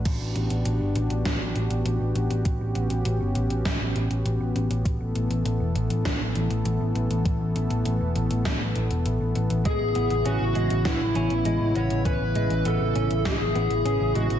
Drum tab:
CC |x---------------|----------------|----------------|----------------|
HH |x-xxx-xxx-xxx-xx|x-xxx-xxx-xxx-xx|x-xxx-xxx-xxx-xx|x-xxx-xxx-xxx-xx|
SD |--------o-------|--------o-------|--------o-------|--------o-------|
BD |o-------o-------|o-------o-------|o-------o-------|o-------o-------|

CC |----------------|----------------|
HH |x-xxx-xxx-xxx-xx|x-xxx-xxx-xxx-xx|
SD |--------o-------|--------o-------|
BD |o-------o-------|o-------o-------|